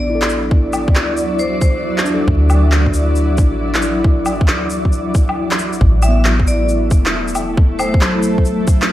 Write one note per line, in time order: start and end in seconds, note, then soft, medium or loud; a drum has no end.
0.00 0.89 A1 medium
0.00 5.77 F#3 medium
0.00 0.60 B3 medium
0.00 0.62 D4 medium
0.00 5.77 E4 medium
0.00 0.29 D5 medium
0.00 5.77 D5 medium
0.10 0.91 E4 medium
0.15 0.94 A4 medium
0.22 clap loud
0.22 shaker soft
0.29 shaker soft
0.51 kick loud
0.73 low woodblock medium
0.73 shaker medium
0.88 2.27 D2 medium
0.88 kick medium
0.95 clap medium
1.17 shaker medium
1.39 1.60 C5 medium
1.39 shaker soft
1.61 2.06 C5 medium
1.61 kick loud
1.61 shaker medium
1.98 clap medium
1.98 shaker soft
2.04 2.87 D4 medium
2.04 shaker medium
2.09 2.89 F#4 medium
2.14 2.92 A4 medium
2.27 3.40 D2 loud
2.27 kick loud
2.50 low woodblock medium
2.50 shaker medium
2.72 clap loud
2.86 kick medium
2.94 shaker medium
3.16 shaker soft
3.38 4.42 A1 loud
3.38 kick loud
3.38 shaker medium
3.74 clap medium
3.74 shaker soft
3.82 4.66 E4 medium
3.82 shaker medium
4.04 kick loud
4.26 low woodblock medium
4.26 shaker medium
4.41 5.39 D2 medium
4.41 kick loud
4.48 clap loud
4.70 shaker medium
4.85 kick medium
4.92 shaker soft
5.15 kick loud
5.15 shaker medium
5.29 low woodblock medium
5.37 5.75 C2 medium
5.51 clap loud
5.51 shaker soft
5.59 shaker medium
5.73 5.80 A1 medium
5.73 shaker soft
5.81 6.92 A1 loud
5.81 8.92 A3 medium
5.81 8.92 E4 medium
5.81 8.92 A4 loud
5.81 kick loud
6.02 6.26 E5 medium
6.02 low woodblock medium
6.02 shaker medium
6.08 6.89 B3 medium
6.25 clap loud
6.40 kick medium
6.47 6.71 D5 medium
6.47 shaker medium
6.69 shaker soft
6.91 7.96 E1 loud
6.91 kick loud
6.91 shaker medium
7.06 clap loud
7.28 shaker soft
7.35 low woodblock medium
7.35 shaker medium
7.57 kick loud
7.79 8.42 C5 medium
7.79 low woodblock medium
7.79 shaker medium
7.94 8.92 A1 medium
7.94 kick loud
8.01 8.84 F#3 medium
8.01 clap loud
8.23 shaker medium
8.38 kick medium
8.45 shaker soft
8.68 kick loud
8.68 shaker medium
8.82 clap loud